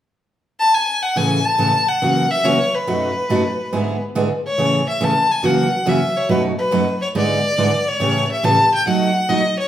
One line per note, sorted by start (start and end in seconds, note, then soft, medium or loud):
0.60 0.76 A5 loud
0.74 1.04 G#5 medium
1.03 1.18 F#5 medium
1.16 1.39 A2 medium
1.16 1.39 C#3 medium
1.16 1.39 E3 medium
1.16 1.39 A3 medium
1.16 1.39 C#4 medium
1.16 1.39 G#4 medium
1.16 1.47 G#5 medium
1.45 1.90 A5 loud
1.58 1.71 A2 medium
1.58 1.71 C#3 medium
1.58 1.71 E3 medium
1.58 1.71 A3 medium
1.58 1.71 C#4 medium
1.58 1.72 G#4 medium
1.88 2.32 F#5 medium
2.02 2.25 F#2 medium
2.02 2.25 C#3 medium
2.02 2.25 E3 medium
2.02 2.25 A#3 medium
2.02 2.25 C#4 medium
2.02 2.25 F#4 medium
2.31 2.47 E5 loud
2.44 2.56 F#2 medium
2.44 2.56 C#3 medium
2.44 2.57 E3 medium
2.44 2.57 A#3 medium
2.44 2.57 C#4 medium
2.44 2.57 F#4 medium
2.44 2.76 C#5 medium
2.75 4.02 B4 medium
2.87 3.10 F#2 soft
2.87 3.10 B2 medium
2.87 3.10 F#3 medium
2.87 3.10 A3 medium
2.87 3.10 D#4 medium
2.87 3.11 F#4 medium
3.30 3.42 F#2 medium
3.30 3.42 B2 medium
3.30 3.42 F#3 medium
3.30 3.42 A3 medium
3.30 3.42 D#4 medium
3.30 3.43 F#4 medium
3.73 3.95 G#2 medium
3.73 3.96 D3 medium
3.73 3.95 G#3 medium
3.73 3.96 B3 medium
3.73 3.96 E4 medium
3.73 3.96 G#4 medium
4.15 4.28 G#2 medium
4.15 4.28 D3 medium
4.15 4.28 G#3 medium
4.15 4.28 B3 medium
4.15 4.28 E4 medium
4.15 4.28 G#4 medium
4.47 4.85 C#5 medium
4.58 4.81 A2 medium
4.58 4.81 C#3 medium
4.58 4.81 E3 soft
4.58 4.81 A3 medium
4.58 4.81 C#4 soft
4.58 4.82 G#4 medium
4.89 5.05 E5 medium
5.01 5.13 A2 medium
5.01 5.13 C#3 medium
5.01 5.13 E3 medium
5.01 5.13 A3 medium
5.01 5.13 C#4 medium
5.01 5.13 G#4 medium
5.01 5.33 A5 medium
5.32 5.47 G#5 medium
5.43 5.66 F#2 medium
5.43 5.66 C#3 medium
5.43 5.66 E3 medium
5.43 5.67 A#3 medium
5.43 5.66 C#4 medium
5.43 5.67 F#4 medium
5.43 5.90 F#5 medium
5.86 5.98 F#2 medium
5.86 5.98 C#3 medium
5.86 5.99 E3 medium
5.86 5.99 A#3 medium
5.86 5.99 C#4 medium
5.86 5.99 F#4 medium
5.86 6.19 E5 medium
6.17 6.30 C#5 medium
6.29 6.52 F#2 medium
6.29 6.52 B2 medium
6.29 6.52 F#3 medium
6.29 6.52 A3 medium
6.29 6.52 D#4 medium
6.29 6.52 F#4 medium
6.29 6.43 B4 medium
6.59 6.98 B4 medium
6.71 6.84 F#2 medium
6.71 6.84 B2 medium
6.71 6.84 F#3 medium
6.71 6.84 A3 medium
6.71 6.85 D#4 medium
6.71 6.84 F#4 medium
7.02 7.08 C#5 medium
7.15 7.38 G#2 medium
7.15 7.38 D3 medium
7.15 7.38 G#3 medium
7.15 7.38 B3 medium
7.15 7.38 E4 medium
7.15 7.38 G#4 medium
7.15 7.90 D5 medium
7.58 7.70 G#2 medium
7.58 7.70 D3 medium
7.58 7.70 G#3 medium
7.58 7.70 B3 medium
7.58 7.70 E4 medium
7.58 7.70 G#4 medium
7.88 8.30 C#5 medium
8.00 8.23 A2 medium
8.00 8.23 C#3 medium
8.00 8.23 E3 medium
8.00 8.24 A3 medium
8.00 8.24 C#4 medium
8.00 8.24 G4 medium
8.32 8.46 E5 medium
8.43 8.55 A2 medium
8.43 8.56 C#3 medium
8.43 8.56 E3 medium
8.43 8.56 A3 medium
8.43 8.56 C#4 medium
8.43 8.56 G4 medium
8.43 8.73 A5 medium
8.74 8.86 G5 medium
8.86 9.09 B2 medium
8.86 9.09 F#3 medium
8.86 9.10 A3 medium
8.86 9.10 D#4 medium
8.86 9.09 F#4 medium
8.86 9.31 F#5 medium
9.29 9.41 B2 medium
9.29 9.41 F#3 medium
9.29 9.41 A3 medium
9.29 9.42 D#4 medium
9.29 9.42 F#4 medium
9.29 9.58 D#5 medium
9.59 9.68 C#5 medium